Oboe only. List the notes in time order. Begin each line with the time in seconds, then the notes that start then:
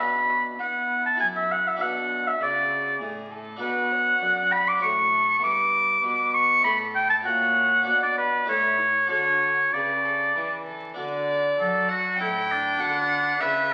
Already playing: B5
0.60 F#5
1.05 A5
1.20 G#5
1.36 E5
1.52 F#5
1.68 E5
1.81 F#5
2.27 E5
2.42 D5
3.61 F#5
4.52 B5
4.68 D6
4.82 C#6
5.43 D6
6.34 C#6
6.64 B5
6.95 G5
7.10 A5
7.25 F#5
8.03 D5
8.18 B4
8.49 C#5
9.10 C#5
9.73 D5
11.60 A4
11.90 F#4
12.20 E4
12.52 D4
13.41 B4